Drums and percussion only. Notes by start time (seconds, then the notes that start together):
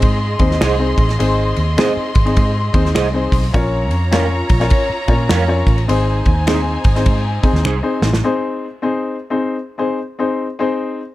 0.02 kick, ride
0.39 kick, ride
0.51 snare
0.61 finger snap, snare, ride
0.98 kick, ride
1.09 snare, ride
1.20 ride
1.56 ride
1.78 finger snap, snare, ride
2.15 kick, ride
2.26 ride
2.36 kick, ride
2.74 kick, ride
2.86 snare
2.95 finger snap, snare, ride
3.32 kick, open hi-hat, ride
3.44 ride
3.54 kick, hi-hat pedal, ride
3.91 ride
4.12 finger snap, snare, ride
4.49 kick, ride
4.61 snare, ride
4.70 kick, ride
5.08 kick, ride
5.29 finger snap, snare, ride
5.67 kick, ride
5.78 ride
5.89 ride
6.26 kick, ride
6.47 finger snap, snare, ride
6.84 kick, ride
6.96 snare, ride
7.06 kick, ride
7.43 kick, ride
7.55 snare
7.65 finger snap
8.02 snare
8.13 snare